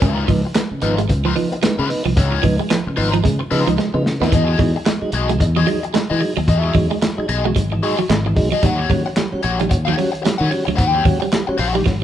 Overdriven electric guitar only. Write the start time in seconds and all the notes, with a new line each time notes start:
0.02 D#4 F4 B4
0.45 muted overdriven electric guitar stroke
0.57 muted overdriven electric guitar stroke
0.82 D#4 F4 B4
0.99 muted overdriven electric guitar stroke
1.09 muted overdriven electric guitar stroke
1.25 D#4 F4 B4
1.36 muted overdriven electric guitar stroke
1.52 muted overdriven electric guitar stroke
1.63 muted overdriven electric guitar stroke
1.79 D#4 F4 B4
1.88 muted overdriven electric guitar stroke
2.05 muted overdriven electric guitar stroke
2.17 D#4 F4 C#5
2.60 muted overdriven electric guitar stroke
2.87 muted overdriven electric guitar stroke
2.96 D#4 F4 B4
3.12 muted overdriven electric guitar stroke
3.39 muted overdriven electric guitar stroke
3.51 D#4 F4 B4
3.67 muted overdriven electric guitar stroke
3.78 muted overdriven electric guitar stroke
3.94 muted overdriven electric guitar stroke
4.22 D#4 F4 B4
4.33 F#4 G#4 D#5
4.76 muted overdriven electric guitar stroke
4.87 muted overdriven electric guitar stroke
5.14 F#4 G#4 D#5
5.30 muted overdriven electric guitar stroke
5.41 muted overdriven electric guitar stroke
5.56 F#4 G#4 D#5
5.67 muted overdriven electric guitar stroke
5.83 muted overdriven electric guitar stroke
5.93 muted overdriven electric guitar stroke
6.10 F#4 G#4 D#5
6.21 muted overdriven electric guitar stroke
6.37 muted overdriven electric guitar stroke
6.48 F4 G#4 E5
6.59 F#4
6.90 muted overdriven electric guitar stroke
7.18 muted overdriven electric guitar stroke
7.29 F#4 G#4 D#5
7.45 muted overdriven electric guitar stroke
7.72 muted overdriven electric guitar stroke
7.83 F#4 G#4 D#5
7.99 muted overdriven electric guitar stroke
8.10 muted overdriven electric guitar stroke
8.27 muted overdriven electric guitar stroke
8.53 F#4 G#4 D#5
8.64 G4 C#5 F#5
9.06 muted overdriven electric guitar stroke
9.17 muted overdriven electric guitar stroke
9.43 G4 C#5 F#5
9.60 muted overdriven electric guitar stroke
9.70 muted overdriven electric guitar stroke
9.85 G4 C#5 F#5
9.95 muted overdriven electric guitar stroke
10.12 muted overdriven electric guitar stroke
10.22 muted overdriven electric guitar stroke
10.38 G4 C#5 F#5
10.50 muted overdriven electric guitar stroke
10.65 muted overdriven electric guitar stroke
10.75 F#4 C5 F#5
10.86 G4 C#5 G5
11.20 muted overdriven electric guitar stroke
11.47 muted overdriven electric guitar stroke
11.58 G4 C#5 F#5
11.74 muted overdriven electric guitar stroke